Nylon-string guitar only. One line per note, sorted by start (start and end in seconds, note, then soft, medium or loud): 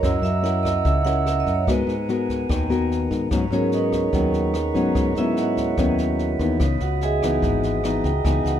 0.03 0.83 F#3 medium
0.03 0.29 C#4 medium
0.03 0.30 E4 medium
0.03 0.30 A#4 medium
0.42 1.01 C#4 medium
0.42 1.02 E4 medium
0.42 1.02 A#4 medium
0.85 1.65 C#3 medium
1.05 1.64 C#4 medium
1.05 1.64 E4 medium
1.05 1.64 A#4 medium
1.68 2.47 G#3 medium
1.68 1.94 B3 medium
1.68 1.94 F#4 medium
1.68 1.94 A#4 medium
2.09 2.67 B3 medium
2.09 2.67 F#4 medium
2.09 2.67 A#4 medium
2.49 3.29 D#3 medium
2.69 3.28 B3 medium
2.69 3.28 F#4 medium
2.69 3.28 A#4 medium
3.32 4.11 G#2 medium
3.32 3.43 F#3 medium
3.32 3.44 B3 medium
3.32 3.44 C#4 medium
3.52 4.10 F#3 medium
3.52 4.10 B3 medium
3.52 4.10 C#4 medium
4.13 4.93 D#3 medium
4.13 4.54 F#3 medium
4.13 4.54 B3 medium
4.13 4.54 C#4 medium
4.74 5.12 F#3 medium
4.74 5.12 B3 medium
4.74 5.13 C#4 medium
4.96 5.76 G#2 medium
5.17 5.75 F#3 medium
5.17 5.75 B3 medium
5.17 5.75 C#4 medium
5.78 6.58 D#3 medium
5.78 6.36 F#3 medium
5.78 6.36 B3 medium
5.78 6.36 C#4 medium
6.41 6.78 E3 medium
6.41 6.78 B3 medium
6.41 6.78 D#4 medium
6.60 7.40 C#3 medium
7.24 7.81 E3 medium
7.24 7.81 B3 medium
7.24 7.81 D#4 medium
7.43 8.23 G#2 medium
7.84 8.10 E3 medium
7.84 8.10 B3 medium
7.84 8.10 D#4 medium
8.25 8.60 C#3 medium
8.25 8.60 E3 medium
8.25 8.60 B3 medium
8.25 8.60 D#4 medium